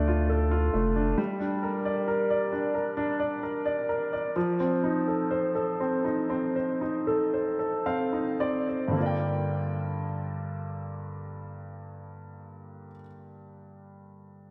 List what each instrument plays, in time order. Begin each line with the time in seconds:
Already playing: sub bass D2, grand piano D3 A3 D4 F4 A4 D5
0.08 grand piano F4
0.30 grand piano A4
0.51 grand piano F4
0.74 sub bass F1, grand piano A3
0.96 grand piano D4
1.18 grand piano G3
1.40 grand piano D4
1.63 grand piano A#4
1.85 grand piano D5
2.08 grand piano A#4
2.30 grand piano D5
2.52 grand piano D4
2.74 grand piano A#4
2.97 grand piano D4
3.20 grand piano D5
3.43 grand piano A#4
3.65 grand piano D5
3.89 grand piano A#4
4.13 grand piano D5
4.36 grand piano F3
4.60 grand piano C4
4.84 grand piano D#4
5.08 grand piano A4
5.31 grand piano C5
5.55 grand piano A4
5.80 grand piano C4
6.05 grand piano D#4
6.30 grand piano C4
6.56 grand piano C5
6.81 grand piano D#4
7.07 grand piano A4
7.34 grand piano C5
7.59 grand piano A4
7.86 grand piano C4 F5
8.13 grand piano D#4
8.40 grand piano C4 D5
8.69 grand piano C5
8.88 grand piano G2 D3
8.95 grand piano A#3 F4
9.02 grand piano D5 G5